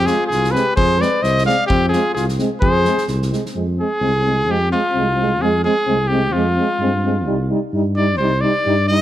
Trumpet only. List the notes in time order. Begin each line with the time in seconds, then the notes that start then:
0.06 G#4
0.27 G#4
0.51 B4
0.76 C5
1.01 D5
1.23 D#5
1.46 F5
1.67 G4
1.89 G#4
2.14 G#4
2.61 C5
3.81 G#4
4.51 G4
4.72 F4
5.42 G#4
5.65 G#4
6.08 G4
6.32 F4
7.97 D5
8.17 C5
8.41 D5
8.88 D#5